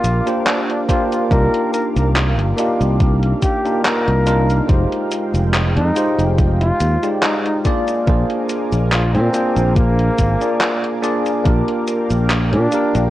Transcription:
Already playing: A#3 D4 F4 G4 A#4 F5 G5 D6
0.04 A#1, closed hi-hat, cabasa
0.26 A#3 D4 F4 G4 C5, closed hi-hat, cabasa
0.47 D4, clap, closed hi-hat, cabasa
0.70 D4, closed hi-hat
0.89 A#3 D4 F4 G4 C5, kick, closed hi-hat, cabasa
1.12 F4, closed hi-hat, cabasa
1.30 C2 A#3 D4 D#4 F4 G4 A#4, kick, closed hi-hat, cabasa
1.54 closed hi-hat
1.73 A#4, closed hi-hat, cabasa
1.96 C2 A#4, closed hi-hat, cabasa
2.16 clap, closed hi-hat, cabasa
2.38 G1, closed hi-hat
2.56 A#3 D4 D#4 F4 G4, closed hi-hat, cabasa
2.80 C2, closed hi-hat, cabasa
3.00 kick, closed hi-hat, cabasa
3.23 closed hi-hat
3.42 G4, kick, closed hi-hat, cabasa
3.64 A#3 D4 D#4 F4 A#4, closed hi-hat, cabasa
3.84 A#4, clap, closed hi-hat, cabasa
4.08 C2, closed hi-hat
4.26 A#3 D4 D#4 F4 A#4, closed hi-hat, cabasa
4.50 closed hi-hat, cabasa
4.67 F1 G#3 D#4 F4 G4 C5 G5, kick, closed hi-hat, cabasa
4.92 closed hi-hat
5.12 closed hi-hat, cabasa
5.34 F1, closed hi-hat, cabasa
5.54 clap, closed hi-hat, cabasa
5.76 F2 D#4, closed hi-hat
5.94 G#3 D#4 F4 G4 C5, closed hi-hat, cabasa
6.18 F1, closed hi-hat, cabasa
6.38 kick, closed hi-hat, cabasa
6.60 F4, closed hi-hat
6.80 D#2, closed hi-hat, cabasa
7.03 G#3 D#4 F4 G4 D5, closed hi-hat, cabasa
7.22 D#4, clap, closed hi-hat, cabasa
7.46 D#4, closed hi-hat
7.65 A#3 D4 F4 G#4 A#4 D5 G#5 D6, kick, closed hi-hat, cabasa
7.88 closed hi-hat, cabasa
8.06 A#1 A#3 D4 F4 G#4 C5, kick, closed hi-hat, cabasa
8.30 closed hi-hat
8.49 closed hi-hat, cabasa
8.72 A#1, closed hi-hat, cabasa
8.92 F4, clap, closed hi-hat, cabasa
9.15 A#2 C4, closed hi-hat
9.33 A#3 D4 F4 G#4 C5, closed hi-hat, cabasa
9.56 A#1, closed hi-hat, cabasa
9.76 A#3, kick, closed hi-hat, cabasa
9.99 closed hi-hat
10.18 G#1, kick, closed hi-hat, cabasa
10.40 A#3 D4 F4 G#4 D5, closed hi-hat, cabasa
10.61 clap, closed hi-hat, cabasa
10.84 closed hi-hat
11.02 A#3 D4 F4 G#4 D5, closed hi-hat, cabasa
11.26 closed hi-hat, cabasa
11.44 A#1 A#3 D4 F4 G4 A#4 F5 G5, kick, closed hi-hat, cabasa
11.68 closed hi-hat
11.88 closed hi-hat, cabasa
12.10 A#1, closed hi-hat, cabasa
12.30 clap, closed hi-hat, cabasa
12.53 A#2 D4, closed hi-hat
12.71 A#3 D4 F4 G4 A#4, closed hi-hat, cabasa
12.95 A#1, closed hi-hat, cabasa

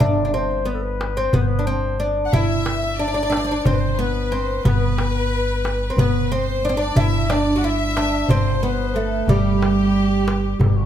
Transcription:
0.00 G1 D4 D5, darbuka dum
0.25 D4
0.34 C4 C5
0.51 darbuka ka
0.65 B3 B4, darbuka ka
0.75 A4
0.83 B4
1.01 darbuka tek
1.17 C4 C5
1.33 G1 B3 B4, darbuka dum
1.41 C5
1.48 B4
1.59 D4
1.66 C4 C5, darbuka ka
2.00 D4, darbuka ka
2.26 F#5
2.33 G1 E4 E5, darbuka dum
2.66 darbuka tek
2.83 E5, darbuka ka
2.99 D4 D5
3.08 D4
3.14 D4
3.23 D4
3.30 D4 E5, darbuka tek
3.37 D4 D5
3.44 D4 C5
3.51 D4
3.56 D5
3.65 G1 C4 C5, darbuka dum
3.74 B4
3.80 C5
3.97 B3 B4, darbuka ka
4.31 C4 C5, darbuka ka
4.65 G1 B3 B4, darbuka dum
4.98 darbuka tek
5.15 darbuka ka
5.65 darbuka tek
5.90 C4
5.97 G1 B3 B4, darbuka dum
6.31 C4 C5, darbuka ka
6.64 D4 D5, darbuka ka
6.69 C4
6.77 D4 D5
6.96 G1 E4 E5, darbuka dum
7.30 D4 D5, darbuka tek
7.46 darbuka ka
7.56 F#4 F#5
7.64 E4 E5
7.97 D4, darbuka tek
8.28 G1 C4 C5, darbuka dum
8.63 B3 B4, darbuka ka
8.96 A3 A4, darbuka ka
9.28 G1 G3 G4, darbuka dum
9.62 darbuka tek
9.79 darbuka ka
9.96 darbuka ka
10.28 darbuka tek
10.59 G1 A4, darbuka dum
10.67 G4
10.76 F#4

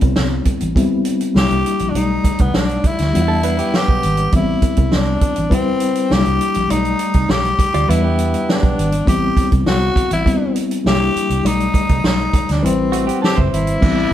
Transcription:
Already playing: G3 B3 C4 E4
0.01 C2, kick, closed hi-hat
0.16 C2, snare
0.45 kick, closed hi-hat
0.60 A1, closed hi-hat
0.75 G3 B3 C4 E4, kick, closed hi-hat
1.05 closed hi-hat
1.20 closed hi-hat
1.34 C2 G3 A#3 D4 D#4 G4, snare
1.43 E4
1.50 C2, closed hi-hat
1.66 closed hi-hat
1.79 A#1, closed hi-hat
1.90 D4
1.95 B1 G3 A3 D#4 D5, closed hi-hat
2.24 kick, closed hi-hat
2.39 C2 B3, kick, closed hi-hat
2.54 B1 D4, snare
2.69 closed hi-hat
2.84 E4, kick, closed hi-hat
2.98 D2, snare, closed hi-hat
3.13 E2 G3 B3 D4 F4, closed hi-hat
3.21 F#5
3.28 A4
3.43 D4 B4, closed hi-hat
3.59 B3 G4, closed hi-hat
3.74 G4, snare
3.88 B1, kick
4.03 G#1, closed hi-hat
4.17 closed hi-hat
4.32 A1 G3 B3 C4 E4, kick, closed hi-hat
4.62 kick, closed hi-hat
4.77 C2, kick, closed hi-hat
4.92 C2 D4, snare
5.21 kick, closed hi-hat
5.36 A1, closed hi-hat
5.49 G3 C4 E4 B4, kick, closed hi-hat
5.54 C4
5.80 closed hi-hat
5.95 closed hi-hat
6.10 C2 G3 A#3 D#4 G4, snare
6.18 E4
6.25 C2, closed hi-hat
6.41 closed hi-hat
6.54 A#1, closed hi-hat
6.69 B1 G3 A3 D#4 D5, closed hi-hat
6.85 closed hi-hat
6.99 closed hi-hat
7.14 C2, kick, closed hi-hat
7.29 B1 G4, snare
7.45 closed hi-hat
7.59 kick, closed hi-hat
7.74 D2 F4 D5, closed hi-hat
7.88 E2 G3 B3 D4 E4 B4 F#5, closed hi-hat
8.04 B3 G4
8.19 closed hi-hat
8.34 closed hi-hat
8.49 D4, snare
8.63 B1, kick, closed hi-hat
8.78 G#1, closed hi-hat
8.92 closed hi-hat
9.05 A1 G3 B3 C4 E4 G4, kick, closed hi-hat
9.37 kick, closed hi-hat
9.52 C2, kick, closed hi-hat
9.66 C2 F#4, snare
9.96 kick, closed hi-hat
10.11 A1 E4, closed hi-hat
10.24 G3 B3 C4 E4, kick, closed hi-hat
10.56 closed hi-hat
10.71 closed hi-hat
10.84 C2 G3 A#3 D4 E4 G4, snare
11.16 muted fingered electric bass stroke, closed hi-hat
11.30 C2, closed hi-hat
11.43 B1 G3 A3 D#4 D5, closed hi-hat
11.60 closed hi-hat
11.74 kick, closed hi-hat
11.89 C2, kick, closed hi-hat
12.04 B1 D#4, snare
12.33 kick, closed hi-hat
12.49 D2 D4, snare, closed hi-hat
12.62 A1 G3 C4 E4 B4, closed hi-hat
12.92 A3 F#4, closed hi-hat
13.07 B3 G4, closed hi-hat
13.22 C4 G4 A4, snare
13.36 F#1 E4 C5, kick
13.53 G#1 E4, closed hi-hat
13.67 closed hi-hat
13.81 A1 G3 B3 C4 D4, kick, crash
13.89 E4

